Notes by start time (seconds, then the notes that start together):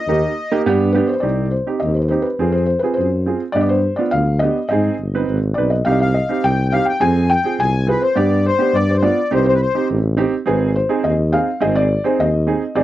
Already playing: D#5
0.07 D#2 A#3 D#4 G4
0.52 A#3 D#4 G4
0.66 G2 B3 D4 G4
0.93 B3 D4 G4 B4
1.07 B4 C5
1.14 C5
1.20 C2 C4 D#4 G4 D5
1.51 C5
1.67 C4 D#4 G4
1.80 D#2 D#5
1.94 C5
2.01 B4
2.08 C4 D#4 G4 C5
2.22 B4
2.39 F2 C4 F4 G#4
2.52 C5
2.66 C5
2.79 C4 B4
2.84 F4 G#4
2.94 C5
2.98 F#2
3.26 C4 F4 G#4
3.52 G2 B3 D4 D5 D#5
3.56 G4
3.61 D5
3.69 C5
3.96 B3 D4 F4 D5
4.11 D2 F5
4.39 B3 D4 G4 D#5
4.69 G#2 C4 D#4 G#4 D#5
4.99 G1
5.15 C4 D#4 B4
5.28 G#1
5.54 B1 C4 D#4 B4 D5
5.70 D#5
5.85 C2 C4 D#4 G4 F5
5.92 D#5
6.00 F5
6.14 D#5
6.29 C4 D#4 G4
6.44 C2 G5
6.69 C4 D#4 F5 G5
6.73 G4
6.85 G5
7.00 F2 C4 F4 G#4 G#5
7.30 G5
7.44 C4 F4 G#4
7.60 C2 G#5
7.87 C4 F4 G#4 B4
8.02 C5
8.15 G2 B3 D4 G4 D5
8.46 C5
8.59 B3 D4 G4
8.74 G2 D5
8.89 C5 D5
8.95 C5
9.02 B3 D4 F4 D5
9.31 C2 C4 D#4 G4 C5
9.38 B4
9.46 C5
9.54 B4
9.62 C5
9.75 C4 D#4 G4
9.90 A1
10.17 C4 D#4 G4
10.46 G#1 C4 D#4 G#4 B4
10.76 C5
10.89 C4 D#4 G#4
11.04 D#2 D#5
11.32 C4 D#4 G#4 F5
11.60 G#1 C4 D#4 G#4 D#5
11.76 D5
12.04 C4 D#4 G#4 C5
12.20 D#2 D#5
12.47 C4 D#4 G#4
12.75 G#1 C4 D#4 G#4 D5